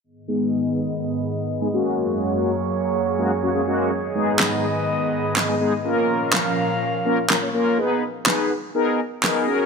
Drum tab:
CP |--------|--------|--x---x-|--x---x-|
SD |--------|--------|--o---o-|--o---o-|

CP |--x---x-|
SD |--o---o-|